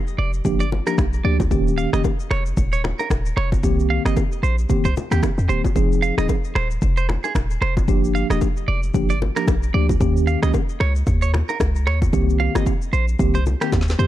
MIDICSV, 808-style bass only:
0, 0, Header, 1, 2, 480
1, 0, Start_track
1, 0, Tempo, 530973
1, 1366, Time_signature, 4, 2, 24, 8
1, 12720, End_track
2, 0, Start_track
2, 0, Title_t, "808-style bass"
2, 0, Program_c, 0, 38
2, 166, Note_on_c, 0, 29, 93
2, 371, Note_off_c, 0, 29, 0
2, 406, Note_on_c, 0, 31, 111
2, 731, Note_off_c, 0, 31, 0
2, 886, Note_on_c, 0, 34, 92
2, 1092, Note_off_c, 0, 34, 0
2, 1125, Note_on_c, 0, 38, 93
2, 1331, Note_off_c, 0, 38, 0
2, 1366, Note_on_c, 0, 27, 105
2, 1691, Note_off_c, 0, 27, 0
2, 1745, Note_on_c, 0, 29, 92
2, 1831, Note_off_c, 0, 29, 0
2, 2085, Note_on_c, 0, 29, 85
2, 2291, Note_off_c, 0, 29, 0
2, 2325, Note_on_c, 0, 27, 106
2, 2650, Note_off_c, 0, 27, 0
2, 2806, Note_on_c, 0, 27, 93
2, 3012, Note_off_c, 0, 27, 0
2, 3045, Note_on_c, 0, 29, 99
2, 3285, Note_on_c, 0, 36, 103
2, 3298, Note_off_c, 0, 29, 0
2, 3610, Note_off_c, 0, 36, 0
2, 3663, Note_on_c, 0, 31, 98
2, 3750, Note_off_c, 0, 31, 0
2, 4004, Note_on_c, 0, 34, 96
2, 4210, Note_off_c, 0, 34, 0
2, 4383, Note_on_c, 0, 36, 91
2, 4470, Note_off_c, 0, 36, 0
2, 4623, Note_on_c, 0, 39, 92
2, 4710, Note_off_c, 0, 39, 0
2, 4863, Note_on_c, 0, 41, 87
2, 4950, Note_off_c, 0, 41, 0
2, 4963, Note_on_c, 0, 27, 92
2, 5083, Note_off_c, 0, 27, 0
2, 5205, Note_on_c, 0, 29, 105
2, 5530, Note_off_c, 0, 29, 0
2, 5585, Note_on_c, 0, 27, 92
2, 5671, Note_off_c, 0, 27, 0
2, 5924, Note_on_c, 0, 27, 90
2, 6130, Note_off_c, 0, 27, 0
2, 6165, Note_on_c, 0, 29, 97
2, 6490, Note_off_c, 0, 29, 0
2, 6646, Note_on_c, 0, 27, 92
2, 6851, Note_off_c, 0, 27, 0
2, 6884, Note_on_c, 0, 29, 89
2, 7125, Note_on_c, 0, 31, 109
2, 7139, Note_off_c, 0, 29, 0
2, 7450, Note_off_c, 0, 31, 0
2, 7504, Note_on_c, 0, 27, 96
2, 7591, Note_off_c, 0, 27, 0
2, 7846, Note_on_c, 0, 29, 89
2, 8051, Note_off_c, 0, 29, 0
2, 8086, Note_on_c, 0, 31, 111
2, 8410, Note_off_c, 0, 31, 0
2, 8566, Note_on_c, 0, 34, 94
2, 8772, Note_off_c, 0, 34, 0
2, 8807, Note_on_c, 0, 38, 94
2, 9012, Note_off_c, 0, 38, 0
2, 9046, Note_on_c, 0, 39, 107
2, 9371, Note_off_c, 0, 39, 0
2, 9425, Note_on_c, 0, 37, 102
2, 9511, Note_off_c, 0, 37, 0
2, 9766, Note_on_c, 0, 37, 101
2, 9971, Note_off_c, 0, 37, 0
2, 10006, Note_on_c, 0, 39, 110
2, 10331, Note_off_c, 0, 39, 0
2, 10487, Note_on_c, 0, 37, 90
2, 10725, Note_on_c, 0, 39, 98
2, 10739, Note_off_c, 0, 37, 0
2, 10931, Note_off_c, 0, 39, 0
2, 10967, Note_on_c, 0, 36, 108
2, 11291, Note_off_c, 0, 36, 0
2, 11345, Note_on_c, 0, 31, 90
2, 11432, Note_off_c, 0, 31, 0
2, 11687, Note_on_c, 0, 34, 95
2, 11892, Note_off_c, 0, 34, 0
2, 11927, Note_on_c, 0, 36, 112
2, 12251, Note_off_c, 0, 36, 0
2, 12407, Note_on_c, 0, 39, 97
2, 12612, Note_off_c, 0, 39, 0
2, 12644, Note_on_c, 0, 41, 94
2, 12720, Note_off_c, 0, 41, 0
2, 12720, End_track
0, 0, End_of_file